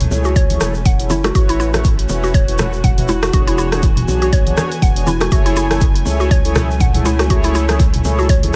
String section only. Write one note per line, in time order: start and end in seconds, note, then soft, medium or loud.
0.00 1.31 F#3 medium
0.00 1.31 A3 medium
0.00 1.31 C#4 medium
0.00 1.31 G#5 medium
1.35 3.31 A3 medium
1.35 3.32 C#4 medium
1.35 5.28 F#4 medium
3.33 5.30 E3 medium
3.33 5.30 B3 medium
3.33 8.56 G#5 medium
5.32 8.56 F#3 medium
5.32 8.56 A3 medium
5.32 8.56 C#4 medium